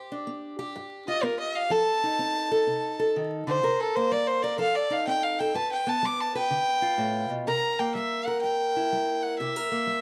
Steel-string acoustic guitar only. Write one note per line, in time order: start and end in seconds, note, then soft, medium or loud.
0.00 0.23 G2 medium
0.00 0.57 G4 medium
0.12 1.69 D4 medium
0.27 0.71 B3 medium
0.59 1.71 G4 medium
0.76 1.20 G2 medium
1.08 1.70 F4 medium
1.23 1.67 B3 medium
1.70 2.15 F3 medium
1.70 2.50 A4 medium
2.03 3.61 D#4 medium
2.19 2.63 C4 medium
2.51 2.98 A4 medium
2.67 3.11 C3 medium
2.99 3.61 A4 medium
3.16 3.47 D#3 medium
3.47 3.63 D3 medium
3.63 4.08 C3 medium
3.63 4.42 A#4 medium
3.96 4.60 A#3 medium
4.11 4.56 G3 medium
4.44 4.57 A#4 medium
4.58 5.03 F3 medium
4.58 5.38 A4 medium
4.90 5.53 D#4 medium
5.07 5.52 C4 medium
5.40 5.54 A4 medium
5.54 5.99 G2 medium
5.54 6.34 B4 medium
5.87 7.45 B3 medium
6.03 6.47 G3 medium
6.35 7.45 B4 medium
6.51 6.95 D3 medium
6.82 7.45 F4 medium
6.98 7.29 A2 medium
7.30 7.46 B2 medium
7.47 7.92 C3 medium
7.47 8.27 A#4 medium
7.79 9.71 A#3 medium
7.95 8.40 G3 medium
8.27 9.40 A#4 medium
8.44 8.88 G2 medium
8.77 9.59 E4 medium
8.93 9.36 G3 medium
9.40 9.84 C3 medium
9.40 9.56 G4 medium
9.56 10.01 A#4 medium
9.72 10.01 A#3 medium
9.87 10.01 G3 medium